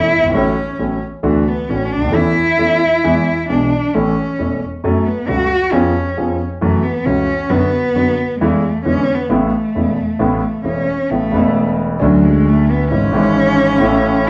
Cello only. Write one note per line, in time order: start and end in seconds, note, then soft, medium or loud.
0.00 0.34 E4 medium
0.34 0.97 C#4 medium
1.26 1.50 A3 medium
1.48 1.72 B3 medium
1.70 1.94 C#4 medium
1.93 2.16 D4 medium
2.15 3.49 E4 loud
3.50 3.95 D4 medium
3.94 4.62 C#4 medium
4.85 5.08 A3 medium
5.06 5.30 B3 medium
5.28 5.74 F#4 medium
5.73 6.40 C#4 medium
6.62 6.85 A3 medium
6.83 7.07 B3 medium
7.05 7.52 C#4 medium
7.50 8.40 B3 loud
8.40 8.71 G#3 medium
8.69 8.84 A3 medium
8.85 9.16 C#4 medium
9.15 9.32 B3 medium
9.30 10.65 A3 medium
10.65 11.12 C#4 medium
11.10 11.78 A3 medium
12.02 12.27 F#3 medium
12.25 12.50 G#3 medium
12.49 12.72 A3 medium
12.71 12.91 B3 medium
12.91 14.29 C#4 loud